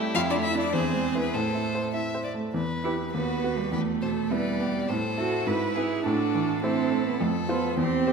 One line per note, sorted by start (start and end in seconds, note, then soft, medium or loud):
0.00 0.12 G2 medium
0.00 0.16 A3 soft
0.00 0.18 E4 medium
0.00 0.72 E4 medium
0.00 0.18 C#5 medium
0.15 0.72 F2 medium
0.15 0.21 F4 medium
0.15 0.21 F5 medium
0.30 0.36 D4 medium
0.30 0.36 D5 medium
0.35 0.66 A3 soft
0.44 0.61 E4 medium
0.44 0.59 E5 medium
0.55 0.72 D4 soft
0.55 0.72 D5 soft
0.59 0.75 D4 medium
0.59 0.74 D5 medium
0.73 1.32 E2 soft
0.73 1.20 C4 medium
0.73 1.35 G#4 medium
0.73 1.18 C5 medium
0.93 1.26 G#3 soft
1.15 1.35 B3 soft
1.15 1.33 E4 soft
1.15 1.33 B4 soft
1.20 1.36 B4 medium
1.33 2.51 A2 soft
1.33 1.94 A3 soft
1.33 1.95 A4 soft
1.33 1.89 C5 soft
1.55 1.87 E4 soft
1.75 2.07 C5 soft
1.94 2.27 E4 soft
1.94 2.23 E5 soft
2.15 2.47 C5 soft
2.24 2.32 D5 soft
2.34 2.54 A3 soft
2.54 3.12 E2 soft
2.54 3.10 B4 soft
2.84 2.92 E4 medium
2.84 3.11 G4 soft
2.84 3.12 B4 soft
3.13 3.71 D#2 soft
3.13 3.60 B3 medium
3.13 3.69 F#4 soft
3.13 3.71 B4 soft
3.44 3.70 F#4 soft
3.44 3.70 B4 soft
3.59 3.73 G3 medium
3.71 4.86 E2 soft
3.71 4.32 A3 medium
3.71 3.80 G4 soft
3.71 3.81 B4 soft
4.02 4.49 B2 soft
4.02 4.33 A4 soft
4.02 4.10 C5 soft
4.30 4.89 G3 medium
4.30 4.57 B3 soft
4.30 4.57 E4 soft
4.30 4.58 B4 soft
4.30 4.62 B4 soft
4.30 4.90 D5 soft
4.60 4.89 B3 soft
4.60 4.91 G4 soft
4.89 5.46 A2 soft
4.89 5.48 A4 soft
4.89 5.48 C5 soft
5.18 5.44 E4 soft
5.18 5.48 F#4 medium
5.18 5.44 A4 soft
5.46 6.03 G#2 soft
5.46 6.04 E4 medium
5.46 5.75 B4 soft
5.46 5.77 B4 soft
5.75 6.02 E4 soft
5.75 5.83 G#4 soft
5.75 6.05 G#4 soft
5.75 6.03 B4 soft
6.03 7.18 A2 soft
6.03 6.62 D4 medium
6.03 6.64 F#4 soft
6.03 6.62 A4 soft
6.35 6.81 E3 soft
6.63 6.89 A3 soft
6.63 7.06 C4 medium
6.63 7.23 E4 soft
6.63 6.89 E4 soft
6.63 7.20 A4 soft
6.63 6.89 C5 soft
6.92 7.21 A3 soft
7.07 7.20 B3 medium
7.20 7.77 F2 soft
7.20 7.28 A3 medium
7.20 7.78 A4 medium
7.49 7.78 B3 medium
7.49 7.75 F4 soft
7.49 7.76 C5 soft
7.49 7.72 C5 soft
7.77 8.13 E2 soft
7.77 8.13 C4 medium
7.77 8.13 G4 medium
8.07 8.13 G4 soft
8.07 8.13 C5 soft